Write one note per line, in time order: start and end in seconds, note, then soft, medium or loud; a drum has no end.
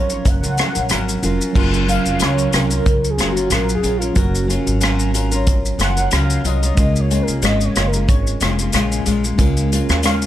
0.00 0.21 G#1 medium
0.00 1.20 F3 medium
0.00 0.10 F#3 medium
0.00 1.18 F#3 medium
0.00 0.11 C#4 medium
0.00 1.19 C#4 medium
0.00 0.11 F4 medium
0.00 0.10 A#4 medium
0.00 1.20 A#4 medium
0.00 0.29 C#5 loud
0.10 0.44 C#4 soft
0.10 0.43 F4 soft
0.10 0.42 A#4 medium
0.10 shaker medium
0.25 0.40 F#1 medium
0.25 1.24 F#5 loud
0.25 kick medium
0.25 closed hi-hat medium
0.25 shaker medium
0.43 0.55 C#2 medium
0.43 0.57 C#4 soft
0.43 0.58 F4 soft
0.43 0.57 A#4 soft
0.43 shaker soft
0.58 0.75 F#3 medium
0.58 0.76 C#4 medium
0.58 0.75 F4 medium
0.58 0.73 A#4 medium
0.58 cross-stick loud
0.58 closed hi-hat medium
0.58 shaker medium
0.75 0.88 A#1 medium
0.75 0.89 C#4 soft
0.75 0.90 F4 soft
0.75 0.90 A#4 soft
0.75 shaker soft
0.89 1.16 G#1 medium
0.89 1.21 F#3 medium
0.89 1.22 C#4 medium
0.89 1.23 A#4 medium
0.89 cross-stick medium
0.89 closed hi-hat medium
0.89 shaker medium
1.09 shaker soft
1.22 1.37 F1 medium
1.22 1.52 F#3 medium
1.22 1.53 F#3 medium
1.22 1.53 C#4 soft
1.22 1.54 C#4 medium
1.22 1.55 F4 soft
1.22 1.55 F4 medium
1.22 1.56 A#4 medium
1.22 1.55 A#4 medium
1.22 closed hi-hat soft
1.22 shaker soft
1.41 shaker soft
1.53 1.96 F#1 medium
1.53 4.11 F#3 medium
1.53 1.85 F#3 medium
1.53 4.12 C#4 medium
1.53 1.86 C#4 medium
1.53 1.87 F4 medium
1.53 4.13 F4 medium
1.53 1.88 A#4 medium
1.53 kick loud
1.53 crash medium
1.58 4.14 A#4 medium
1.74 shaker soft
1.86 2.18 F#3 medium
1.86 2.19 C#4 medium
1.86 2.19 F4 medium
1.86 2.19 A#4 medium
1.86 2.25 F5 loud
1.86 closed hi-hat medium
1.86 shaker medium
2.06 2.18 F1 medium
2.06 shaker soft
2.19 2.46 C#2 medium
2.19 2.50 F#3 medium
2.19 2.51 C#4 medium
2.19 2.52 F4 medium
2.19 2.53 A#4 medium
2.19 cross-stick medium
2.19 closed hi-hat medium
2.19 shaker medium
2.23 2.57 C#5 loud
2.38 shaker soft
2.51 2.79 C2 medium
2.51 2.70 F#3 medium
2.51 2.71 C#4 medium
2.51 2.70 F4 medium
2.51 2.68 A#4 medium
2.51 3.11 A#4 loud
2.51 cross-stick medium
2.51 closed hi-hat medium
2.51 shaker medium
2.70 3.17 C#4 soft
2.70 3.18 F4 soft
2.70 3.18 A#4 medium
2.70 shaker medium
2.86 3.12 C#2 medium
2.86 kick medium
2.86 closed hi-hat medium
2.86 shaker medium
3.04 shaker soft
3.10 3.33 G#4 loud
3.18 3.44 F#1 medium
3.18 3.36 F#3 medium
3.18 3.36 C#4 medium
3.18 3.36 F4 medium
3.18 3.34 A#4 medium
3.18 cross-stick medium
3.18 closed hi-hat medium
3.18 shaker medium
3.31 3.54 F#4 medium
3.35 3.50 C#4 soft
3.35 3.51 F4 soft
3.35 3.51 A#4 medium
3.35 shaker soft
3.50 3.77 A#1 medium
3.50 3.81 F#3 medium
3.50 3.82 C#4 medium
3.50 3.83 F4 medium
3.50 3.84 A#4 medium
3.50 3.74 A#4 loud
3.50 cross-stick medium
3.50 closed hi-hat medium
3.50 shaker medium
3.69 shaker soft
3.75 3.99 G#4 medium
3.83 4.09 A#1 medium
3.83 4.01 F#3 medium
3.83 4.02 C#4 medium
3.83 4.01 F4 medium
3.83 3.99 A#4 medium
3.83 closed hi-hat soft
3.83 shaker soft
3.97 4.20 F4 medium
3.97 4.15 A#4 soft
4.02 4.14 C#4 soft
4.02 4.16 F4 soft
4.02 shaker soft
4.13 4.57 F#1 loud
4.13 6.72 F#3 medium
4.13 4.46 F#3 medium
4.13 6.72 C#4 medium
4.13 4.47 C#4 medium
4.13 6.73 F#4 medium
4.13 4.48 A#4 medium
4.13 kick medium
4.13 closed hi-hat medium
4.13 shaker medium
4.18 4.50 F#4 medium
4.18 6.74 A#4 medium
4.35 shaker medium
4.47 4.79 F#3 medium
4.47 4.79 C#4 medium
4.47 4.80 F4 medium
4.47 4.80 A#4 medium
4.47 closed hi-hat medium
4.47 shaker medium
4.67 5.75 G#1 medium
4.67 shaker medium
4.80 5.12 F#3 medium
4.80 5.12 C#4 medium
4.80 5.13 F4 medium
4.80 5.14 A#4 loud
4.80 cross-stick loud
4.80 closed hi-hat medium
4.80 shaker medium
4.99 shaker medium
5.13 5.32 F#3 medium
5.13 5.32 C#4 medium
5.13 5.31 F4 medium
5.13 5.30 A#4 medium
5.13 closed hi-hat medium
5.13 shaker medium
5.31 5.77 C#4 medium
5.31 5.78 F4 medium
5.31 5.79 A#4 medium
5.31 shaker medium
5.47 kick medium
5.47 closed hi-hat medium
5.47 shaker medium
5.65 shaker soft
5.78 6.05 F#1 medium
5.78 5.97 F#3 medium
5.78 5.97 C#4 medium
5.78 5.96 F4 medium
5.78 5.95 A#4 medium
5.78 6.11 F#5 loud
5.78 cross-stick medium
5.78 closed hi-hat medium
5.78 shaker medium
5.96 6.11 C#4 soft
5.96 6.11 F4 soft
5.96 6.12 A#4 medium
5.96 shaker medium
6.11 6.38 C#2 medium
6.11 6.43 F#3 medium
6.11 6.44 C#4 medium
6.11 6.45 F4 medium
6.11 6.45 A#4 medium
6.11 6.47 F5 loud
6.11 cross-stick medium
6.11 closed hi-hat medium
6.11 shaker medium
6.30 shaker soft
6.44 6.71 C2 medium
6.44 6.62 F#3 medium
6.44 6.63 C#4 medium
6.44 6.62 F4 medium
6.44 6.61 A#4 medium
6.44 7.02 D#5 loud
6.44 closed hi-hat soft
6.44 shaker soft
6.62 6.78 C#4 soft
6.62 6.77 F4 soft
6.62 6.77 A#4 medium
6.62 shaker soft
6.75 7.18 C#2 loud
6.75 7.09 C#3 medium
6.75 9.33 G#3 medium
6.75 7.10 G#3 medium
6.75 7.10 A#3 medium
6.75 9.34 C#4 medium
6.75 9.35 F4 medium
6.75 7.10 F4 medium
6.75 kick loud
6.75 closed hi-hat medium
6.75 shaker medium
6.80 9.36 A#4 medium
6.96 shaker soft
7.00 7.24 C#5 medium
7.10 7.42 C#3 medium
7.10 7.42 G#3 medium
7.10 7.43 A#3 medium
7.10 7.43 F4 medium
7.10 closed hi-hat medium
7.10 shaker medium
7.22 7.45 A#4 medium
7.28 7.40 C2 medium
7.28 shaker medium
7.42 7.69 G#1 medium
7.42 7.74 C#3 medium
7.42 7.75 G#3 medium
7.42 7.76 A#3 medium
7.42 7.76 F4 medium
7.42 7.66 D#5 loud
7.42 cross-stick medium
7.42 closed hi-hat medium
7.42 shaker medium
7.61 7.89 C#5 medium
7.61 shaker soft
7.75 8.09 F#1 medium
7.75 7.93 C#3 medium
7.75 7.94 G#3 medium
7.75 7.93 A#3 medium
7.75 7.92 F4 medium
7.75 cross-stick medium
7.75 closed hi-hat medium
7.75 shaker medium
7.87 8.08 A#4 medium
7.93 8.40 G#3 soft
7.93 8.41 A#3 medium
7.93 8.41 F4 medium
7.93 shaker medium
8.08 8.34 G#1 medium
8.08 8.38 C#5 medium
8.08 kick loud
8.08 closed hi-hat medium
8.08 shaker medium
8.27 shaker medium
8.40 8.67 F1 medium
8.40 8.58 C#3 medium
8.40 8.59 G#3 medium
8.40 8.59 A#3 medium
8.40 8.58 F4 medium
8.40 cross-stick loud
8.40 closed hi-hat medium
8.40 shaker medium
8.59 8.72 G#3 soft
8.59 8.73 A#3 medium
8.59 8.73 F4 medium
8.59 shaker medium
8.73 9.00 A#1 medium
8.73 9.04 C#3 medium
8.73 9.05 G#3 medium
8.73 9.06 A#3 medium
8.73 9.06 F4 medium
8.73 cross-stick medium
8.73 closed hi-hat medium
8.73 shaker medium
8.92 shaker soft
9.05 9.32 A#1 medium
9.05 9.24 C#3 medium
9.05 9.24 G#3 medium
9.05 9.24 A#3 medium
9.05 9.23 F4 medium
9.05 closed hi-hat soft
9.05 shaker soft
9.24 9.37 G#3 soft
9.24 9.38 A#3 medium
9.24 9.38 F4 medium
9.24 shaker soft
9.36 9.79 C#2 loud
9.36 9.70 C#3 medium
9.36 10.26 G#3 medium
9.36 9.71 G#3 loud
9.36 9.71 A#3 medium
9.36 10.26 C#4 medium
9.36 10.26 F4 medium
9.36 9.72 F4 medium
9.36 kick loud
9.36 closed hi-hat medium
9.36 shaker medium
9.41 10.26 A#4 medium
9.57 shaker soft
9.71 10.02 C#3 medium
9.71 10.03 G#3 medium
9.71 10.04 A#3 medium
9.71 10.04 F4 medium
9.71 closed hi-hat medium
9.71 shaker medium
9.89 10.26 D#2 medium
9.89 cross-stick medium
9.89 shaker medium
10.03 10.26 C#3 medium
10.03 10.26 G#3 medium
10.03 10.26 A#3 medium
10.03 10.26 F4 medium
10.03 10.24 F5 loud
10.03 cross-stick loud
10.03 closed hi-hat medium
10.03 shaker medium
10.22 shaker medium